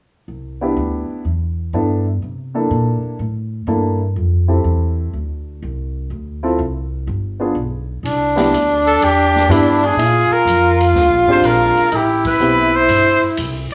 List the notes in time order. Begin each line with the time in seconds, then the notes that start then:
0.28 C2
0.61 B3 D4 E4 G4
0.77 D2
1.10 muted upright bass stroke
1.25 E2
1.73 G2 B3 D4 E4 A4
2.22 C3
2.54 A#3 D4 E4 A4
2.71 A#2
3.04 muted upright bass stroke
3.19 A2
3.67 G2 A#3 D4 E4 A4
4.16 F2
4.48 C4 E4 G4 A4
4.64 E2
5.13 D2
5.62 C2
6.10 D2
6.43 C4 E4 F4 A4
6.59 C2
7.07 G1
7.40 B3 D4 F4 G#4
7.55 B1
8.03 C2 D4, ride
8.36 B3 D4 E4 G4, snare, ride
8.52 D2, hi-hat pedal, ride
8.87 A4, ride
9.01 E2 G4, ride
9.36 snare
9.49 G2 B3 D4 E4 G4, hi-hat pedal, ride
9.84 G#4, ride
9.96 A#2 F4, ride
10.30 A#4, muted upright bass stroke
10.45 F2, hi-hat pedal, ride
10.81 ride
10.93 D2, snare
11.10 A#1
11.26 G#1 G#3 C4 D4 G4, kick
11.31 C5
11.42 A#1, hi-hat pedal, ride
11.46 A#4
11.77 ride
11.92 A1 E4 G4, ride
12.25 B4, kick, ride
12.40 B1 B3 C4 E4 G4, hi-hat pedal
12.76 C5
12.88 G1, ride
13.22 muted upright bass stroke
13.37 C2, hi-hat pedal, ride
13.70 ride